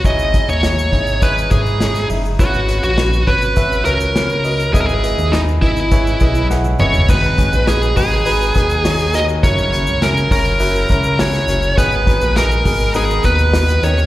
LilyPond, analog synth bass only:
\new Staff \with { instrumentName = "Analog synth bass" } { \clef bass \time 4/4 \key gis \minor \tempo 4 = 102 gis,,8. dis,8. gis,,4 gis,4 fis,,8 | gis,,8. ais,,8. gis,,4 cis,4. | gis,,8. dis,8. gis,,4 b,,4 fis,,8 | gis,,8. ais,,8. gis,,4 dis,4. |
fis,,8. cis,8. fis,,4 cis,4 fis,,8 | gis,,8. ais,,8. gis,,4 dis,4 dis,8 | }